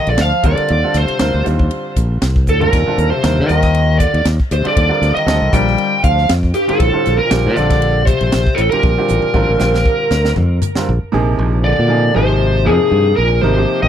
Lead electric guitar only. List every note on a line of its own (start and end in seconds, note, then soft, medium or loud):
0.10 0.21 D5 medium
0.21 0.45 F5 medium
0.45 0.97 D5 medium
0.97 1.43 C5 medium
2.49 2.61 A4 medium
2.61 3.09 A#4 medium
3.10 3.47 C5 medium
3.48 3.98 D#5 medium
3.99 4.23 D5 medium
4.53 4.67 C5 medium
4.67 5.14 D5 medium
5.15 5.53 D#5 medium
5.53 6.04 G5 medium
6.04 6.28 F5 medium
6.55 6.69 G4 medium
6.70 7.18 A4 medium
7.18 7.53 A#4 medium
7.54 8.06 D5 loud
8.06 8.59 C5 loud
8.55 8.70 A4 medium
8.70 10.32 A#4 medium
11.64 12.16 D5 medium
12.16 12.68 C5 medium
12.66 13.16 G#4 medium
13.16 13.40 A#4 medium
13.41 13.78 C5 medium
13.82 13.88 D#5 medium